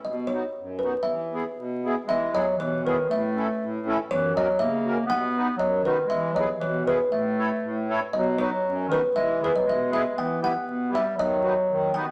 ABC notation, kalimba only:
X:1
M:2/4
L:1/16
Q:1/4=119
K:E
V:1 name="Kalimba"
d2 c4 B2 | e6 z2 | e2 d2 c2 B2 | e6 z2 |
c2 d2 e4 | f4 d2 B2 | e2 d2 c2 B2 | e6 z2 |
d2 c4 B2 | e2 B d e2 e2 | [K:Em] g2 f4 e2 | ^d6 g2 |]